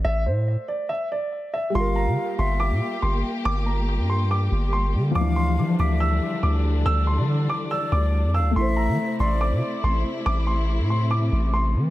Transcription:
X:1
M:4/4
L:1/16
Q:1/4=141
K:Gdor
V:1 name="Grand piano"
e2 c4 d2 e2 d4 e2 | c'2 b4 c'2 d'4 c'2 z2 | d'2 b4 c'2 d'4 c'2 z2 | d'2 c'4 d'2 e'4 d'2 z2 |
e'2 c'4 d'2 e'2 d'4 e'2 | c'2 b4 c'2 d'4 c'2 z2 | d'2 c'4 c'2 d'4 c'2 z2 |]
V:2 name="Flute"
z16 | f6 e6 z4 | z16 | f6 e6 z4 |
z8 d6 f2 | e6 d6 z4 | z16 |]
V:3 name="Felt piano"
z16 | [G,FB]16- | [G,FB]16 | [E,F,D]16- |
[E,F,D]16 | [A,Ec]16- | [A,Ec]16 |]
V:4 name="String section"
z16 | [G,B,G]16- | [G,B,G]16 | [D,D]16- |
[D,D]16 | [C,A,E]16- | [C,A,E]16 |]
V:5 name="808-style bass" clef=bass
A,,,2 A,,3 z8 z3 | G,,,3 D, z2 G,,,3 B,, z2 G,,,2 z2 | G,,,4- G,,, G,,4- G,, G,,,4 D,2 | D,,4 F,2 D,,4 z2 D,,4 |
D,,3 D,3 z4 D,,3 F,,3/2 D,,3/2 | A,,,3 E, z2 A,,,3 C, z2 A,,,2 z2 | A,,,4- A,,, A,,4- A,, A,,,4 E,2 |]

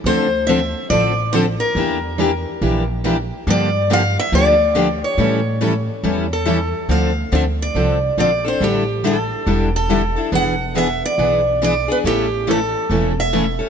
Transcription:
X:1
M:4/4
L:1/8
Q:"Swing" 1/4=140
K:Dm
V:1 name="Steel-string acoustic guitar"
c2 e2 d2 c B- | B4- B z3 | d2 f e d3 ^c- | ^c4- c A3 |
f2 e d3 d c | G2 A3 A3 | ^f2 e d3 d =B | G2 A3 e2 z |]
V:2 name="Steel-string acoustic guitar"
[D,F,CDA] z [D,F,CDA] z [D,F,CDA] z [D,F,CDA] z | [E,G,DEB] z [E,G,DEB] z [E,G,DEB] z [E,G,DEB] z | [D,F,B,DG] z [D,F,B,DG] z [D,F,B,DG] z [D,F,B,DG] z | [E,G,^CEA] z [E,G,CEA] z [E,G,CEA] z [E,G,CEA] z |
[D,F,CDA] z [D,F,CDA] z [D,F,CDA] z [D,F,CDA] z | [D,G,DEA] z [D,G,DEA] z [D,G,DEA] z [D,G,DEA] z | [E,=B,D^G=B] z [E,B,DGB] z [E,B,DGB] z [E,B,DGB] z | [E,A,^CEA] z [E,A,CEA] z [E,A,CEA] z [E,A,CEA] z |]
V:3 name="Steel-string acoustic guitar"
[D,F,CDA] z [D,F,CDA] z [D,F,CDA] z [D,F,CDA] z | [E,B,DG] z [E,B,DG] z [E,B,DG] z [E,B,DG] z | [D,F,B,DG] z [D,F,B,DG] z [D,F,B,DG] z [D,F,B,DG] z | [E,G,^CEA] z [E,G,CEA] z [E,G,CEA] z [E,G,CEA] z |
[D,F,CDA] z [D,F,CDA] z [D,F,CDA] z [D,F,CDA] [CDA] | [D,G,DEA] z [D,G,DEA] z [D,G,DEA] z [D,G,DEA] [DEA] | [E,=B,D^G] z [E,B,DG] z [E,B,DG] z [E,B,DG] [B,DG] | [^C,E,A,^CA] z [C,E,A,CA] z [C,E,A,CA] z [C,E,A,CA] [A,CA] |]
V:4 name="Upright bass" clef=bass
D,,4 A,,,4 | E,,4 B,,,4 | G,,4 D,,4 | A,,4 E,,4 |
D,,2 D,,2 C,,2 B,,,2 | A,,,4 E,,,4 | E,,,4 =B,,,4 | A,,,4 E,,,4 |]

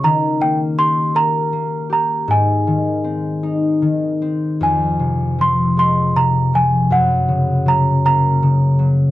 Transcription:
X:1
M:6/8
L:1/8
Q:3/8=53
K:Fm
V:1 name="Celesta"
b g c' b2 b | a4- a z | a2 c' c' b a | _g2 b b2 z |]
V:2 name="Harp" clef=bass
E, B, G B B, G | A,, E, C E E, C | F,, C, F, A, C, F, | _G,, D, _G, B, D, G, |]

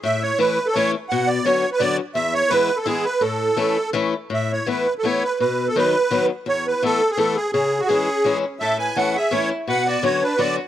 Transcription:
X:1
M:3/4
L:1/16
Q:1/4=168
K:A
V:1 name="Accordion"
e2 c2 B3 A c2 z2 | f2 d2 c3 B d2 z2 | e2 c2 B3 A G2 B2 | A8 z4 |
e2 c2 B3 A c2 B2 | B3 A B6 z2 | c2 B2 A3 G A2 G2 | G3 F G6 z2 |
e2 g2 f2 e2 c2 z2 | f2 d2 c2 B2 d2 z2 |]
V:2 name="Violin"
z12 | z12 | z12 | z12 |
z12 | z12 | z12 | z4 C6 z2 |
A2 B2 A2 G2 E2 z2 | B2 F2 F2 D2 F2 z2 |]
V:3 name="Steel-string acoustic guitar"
A,,4 [E,A,CE]2 z2 [E,A,CE]2 z2 | B,,4 [D,F,B,C]2 z2 [D,F,B,C]2 z2 | E,,4 [E,G,B,E]2 z2 [E,G,B,E]2 z2 | A,,4 [E,A,CE]2 z2 [E,A,CE]2 z2 |
A,,4 [E,A,B,E]2 z2 [E,A,B,E]2 z2 | B,,4 [^D,F,B,^D]2 z2 [D,F,B,D]2 z2 | E,,4 [E,A,B,E]2 z2 [E,A,B,E]2 z2 | C,4 [E,G,CE]2 z2 [E,G,CE]2 z2 |
A,,4 [E,A,CE]2 z2 [E,A,CE]2 z2 | B,,4 [D,F,B,C]2 z2 [D,F,B,C]2 z2 |]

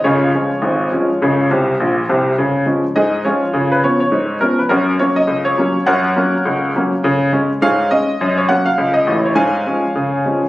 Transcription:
X:1
M:2/4
L:1/16
Q:"Swing 16ths" 1/4=103
K:Db
V:1 name="Upright piano"
[FAd]8- | [FAd]6 z2 | z4 [Ae]2 [FAd]2- | [FAd] _c d d3 B c |
[DGB]2 d e2 d3 | [Bdg]6 z2 | z4 [Adf]2 e2- | e d g f2 e2 d |
[dfa]8 |]
V:2 name="Upright piano" clef=bass
[D,,D,]2 [F,A,D]2 [A,,,A,,]2 [F,A,D]2 | [D,,D,]2 [C,,C,]2 [B,,,B,,]2 [C,,C,]2 | D,2 [F,A,D]2 A,,2 [F,A,D]2 | D,2 [F,_CD]2 A,,2 [F,CD]2 |
G,,2 [G,B,D]2 D,,2 [G,B,D]2 | G,,2 [G,B,D]2 D,,2 [G,B,D]2 | D,2 [A,D]2 A,,2 [A,D]2 | G,,2 [G,B,D]2 D,,2 [=A,,,=A,,]2 |
A,,2 [F,A,D]2 D,2 [F,A,D]2 |]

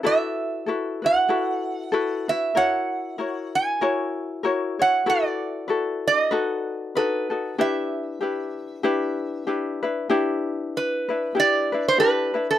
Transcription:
X:1
M:4/4
L:1/16
Q:"Swing" 1/4=95
K:Bphr
V:1 name="Resonator guitar played with a steel bar"
e6 f8 e2 | f6 ^g8 f2 | d6 ^d6 B4 | e12 z4 |
[K:Em] z4 B4 d3 c B3 A |]
V:2 name="Ukulele"
[EFAB]4 [EFAB]2 [EFB]2 [EFAB]4 [EFAB]2 [EFB]2 | [EF^A^c]4 [EFAc]4 [EFAc]4 [EFAc]2 [EFc]2 | [EFAB]4 [EFAB]4 [^DFAB]4 [DFAB]2 [DFA]2 | [DEGB]4 [DEGB]4 [DEGB]4 [DEGB]2 [DEB]2 |
[K:Em] [DEGB]6 [DEB]2 [DEGB]2 [DEB]2 [DEGB]2 [DEB]2 |]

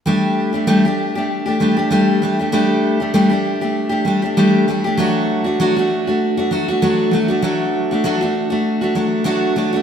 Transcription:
X:1
M:4/4
L:1/16
Q:"Swing 16ths" 1/4=98
K:Dphr
V:1 name="Steel-string acoustic guitar"
[G,A,DG]3 [A,DG] [G,A,DG] [A,DG]2 [A,DG]2 [A,DG] [G,A,DG] [A,DG] [G,A,DG]2 [G,A,DG] [A,DG] | [G,A,DG]3 [A,DG] [G,A,DG] [A,DG]2 [A,DG]2 [A,DG] [G,A,DG] [A,DG] [G,A,DG]2 [G,A,DG] [A,DG] | [^F,A,D^F]3 [A,DF] [F,A,DF] [A,DF]2 [A,DF]2 [A,DF] [F,A,DF] [A,DF] [F,A,DF]2 [F,A,DF] [A,DF] | [^F,A,D^F]3 [A,DF] [F,A,DF] [A,DF]2 [A,DF]2 [A,DF] [F,A,DF]2 [F,A,DF]2 [F,A,DF] [A,DF] |]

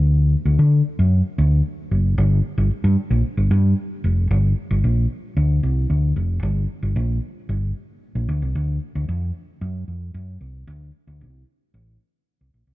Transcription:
X:1
M:4/4
L:1/16
Q:1/4=113
K:Dm
V:1 name="Fingered electric bass" clef=bass
D,,3 D,, D,2 z ^F,,2 z D,,2 z2 ^F,,,2 | G,,,2 z G,,, z G,, z B,,, z G,,, G,,2 z2 F,,,2 | G,,,2 z G,,, B,,,2 z2 D,,2 C,,2 D,,2 F,,,2 | G,,,2 z G,,, B,,,2 z2 G,,,2 z3 B,,, D,, C,, |
D,,2 z D,, F,,2 z2 ^F,,2 =F,,2 ^F,,2 C,,2 | D,,2 z D,, C,,2 z2 A,,,2 z3 C,, B,,, C,, |]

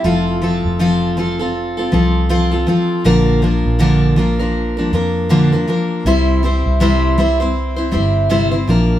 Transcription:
X:1
M:4/4
L:1/16
Q:"Swing 16ths" 1/4=80
K:F
V:1 name="Steel-string acoustic guitar"
[F,CFA]2 [F,CFA]2 [F,CFA]2 [F,CFA] [CFA]2 [CFA] [F,CFA]2 [F,CFA] [CFA] [F,CFA]2 | [B,,D,F,B,DB]2 [F,B,DB]2 [B,,D,F,B,DB]2 [F,B,DB] [F,B,DB]2 [F,B,DB] [F,B,DB]2 [B,,D,F,B,DB] [F,B,DB] [F,B,DB]2 | [C,G,CEc]2 [G,CEc]2 [C,G,CEc]2 [G,CEc] [CEc]2 [CEc] [G,CEc]2 [C,G,CEc] [CEc] [F,B,DB]2 |]
V:2 name="Fingered electric bass" clef=bass
F,,,3 F,,,6- F,,, C,,4 z2 | B,,,3 B,,,6- B,,, F,,4 z2 | C,,3 C,,6- C,, G,,,4 B,,,2 |]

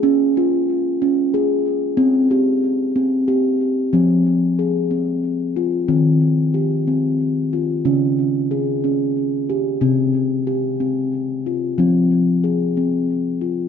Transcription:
X:1
M:3/4
L:1/8
Q:"Swing 16ths" 1/4=92
K:Fm
V:1 name="Steel tongue drum"
z F2 D A2 | z G2 C G2 | C2 A C2 F | C2 G C2 F |
D2 A D2 G | C2 G C2 F | C2 A C2 F |]
V:2 name="Steel tongue drum" clef=bass
D4 z2 | C4 z2 | F,4 z2 | E,4 z2 |
D,4 z2 | C,4 z2 | F,4 z2 |]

